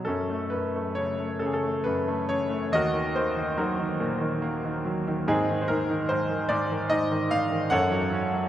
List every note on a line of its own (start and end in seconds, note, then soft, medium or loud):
0.05 0.51 F#2 medium
0.05 1.36 C#4 soft
0.05 0.52 A4 medium
0.30 0.74 A3 soft
0.50 1.85 F#2 soft
0.50 0.92 B4 medium
0.76 1.18 A3 soft
0.95 1.40 C#3 soft
0.95 1.37 C#5 medium
1.19 1.61 A3 soft
1.39 2.27 C#3 medium
1.39 1.47 A4 medium
1.46 1.54 G#4 medium
1.53 1.82 A4 medium
1.63 2.06 A3 soft
1.84 2.70 F#2 soft
1.84 2.30 B4 medium
2.08 2.48 A3 soft
2.29 2.70 C#3 soft
2.29 2.73 C#5 medium
2.50 2.71 A3 soft
2.72 5.23 D#2 medium
2.72 3.58 F#4 medium
2.72 3.56 A#4 medium
2.72 3.16 D#5 loud
2.93 3.35 D#3 soft
3.14 4.40 A#3 soft
3.14 3.59 C5 medium
3.37 3.77 D#3 soft
3.57 4.84 F#3 medium
3.57 4.82 D#4 soft
3.57 4.82 F#4 medium
3.57 4.81 A#4 medium
3.79 4.20 D#3 soft
4.00 5.24 A#2 medium
4.21 4.63 D#3 soft
4.42 5.24 A#3 medium
4.65 5.06 D#3 soft
4.85 5.26 F#3 medium
5.07 5.27 D#3 medium
5.28 5.68 G#2 medium
5.28 6.46 C4 medium
5.28 6.46 D#4 medium
5.28 5.63 G#4 medium
5.50 5.88 D#3 medium
5.61 5.68 C5 medium
5.68 6.09 G#2 medium
5.68 6.10 A#4 medium
5.90 6.28 D#3 medium
6.09 6.48 G#2 medium
6.09 6.50 C5 medium
6.30 6.70 D#3 soft
6.49 6.89 G#2 medium
6.49 6.91 D5 medium
6.71 7.10 D#3 medium
6.90 7.30 G#2 medium
6.90 7.28 D#5 medium
7.11 7.50 D#3 medium
7.31 7.71 G#2 medium
7.31 7.73 F5 loud
7.51 7.71 D#3 medium
7.70 8.49 F#2 medium
7.70 8.49 A4 medium
7.70 8.49 C#5 medium
7.70 8.49 F#5 loud
7.92 8.32 F#3 medium
8.12 8.49 C#4 medium
8.34 8.49 F#3 soft